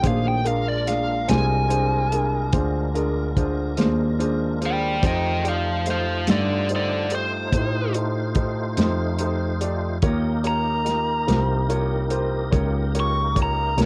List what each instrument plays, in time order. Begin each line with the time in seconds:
0.02 grand piano A#1, tonewheel organ D#3 F#3 A3 G#4, upright piano D4 F4 G#4 C5, kick, closed hi-hat
0.07 lead electric guitar F5
0.28 lead electric guitar G5
0.44 tonewheel organ G#3 D4 F4 A#4, upright piano D4 F4 G#4 A#4, lead electric guitar F5, closed hi-hat
0.68 lead electric guitar D5
0.86 upright piano D4 F4 G#4 D5, lead electric guitar F5, snare, closed hi-hat
1.28 grand piano C2, upright piano D4 F4 G#4 C5, lead electric guitar G#5, snare, closed hi-hat
1.70 upright piano D4 F4 G#4 C5, closed hi-hat
2.12 upright piano D4 F4 G#4 A#4, closed hi-hat
2.53 grand piano D2, upright piano D4 F4 G#4 C5, kick, closed hi-hat
2.94 upright piano D4 F4 G#4 A#4, closed hi-hat
3.36 upright piano D4 F4 G#4 C5, kick, closed hi-hat
3.77 grand piano D#2, upright piano D4 F4 G#4 C5, snare, closed hi-hat
4.18 upright piano D4 F4 G#4 C5, closed hi-hat
4.61 upright piano D4 F4 G#4 C5, closed hi-hat
4.66 lead electric guitar D5 G5
5.02 grand piano F2, tonewheel organ A3 D#4 F4 C5, upright piano D#4 G4 A4 C5, kick, closed hi-hat
5.06 lead electric guitar D#5 G5
5.43 upright piano D#4 G4 A4 D5, closed hi-hat
5.49 lead electric guitar C5 F5
5.86 upright piano D#4 G4 A4 C5, snare, closed hi-hat
5.90 lead electric guitar C5 F5
6.27 grand piano G2, upright piano D#4 G4 A4 F5, lead electric guitar A4 D5, snare, closed hi-hat
6.69 upright piano D#4 G4 A4 C5, closed hi-hat
6.75 lead electric guitar A4 D5
7.10 upright piano D#4 G4 A4 C5, closed hi-hat
7.15 lead electric guitar C5
7.52 grand piano A2, upright piano D#4 G4 A4 C5, kick, closed hi-hat
7.94 upright piano D#4 G4 A4 C5, closed hi-hat
8.35 upright piano D#4 G4 A4 C5, kick, closed hi-hat
8.77 grand piano F2, upright piano D#4 G4 A4 C5, snare, closed hi-hat
9.19 upright piano D#4 G4 A4 C5, closed hi-hat
9.61 upright piano D#4 G4 A4 D5, closed hi-hat
10.02 grand piano D#2, tonewheel organ A#3 D#4 G4 A#4, upright piano F4 G4 A#4 C#5, kick, closed hi-hat
10.43 upright piano F4 G4 A#4 C#5, lead electric guitar A#5, closed hi-hat
10.85 upright piano F4 G4 A#4 D#5, snare, closed hi-hat
11.27 grand piano C2, upright piano F4 G4 A#4 C5, closed hi-hat
11.31 snare
11.69 upright piano F4 G4 A#4 C#5, closed hi-hat
12.10 upright piano F4 G4 A#4 C5, closed hi-hat
12.51 grand piano C#2, upright piano F4 G4 A#4 C#5, kick, closed hi-hat
12.94 upright piano F4 G4 A#4 C#5, closed hi-hat
13.00 lead electric guitar C#6
13.35 upright piano F4 G4 A#4 C#5, kick, closed hi-hat
13.42 lead electric guitar A#5
13.77 grand piano C2, upright piano F4 G4 A#4 C#5, snare, closed hi-hat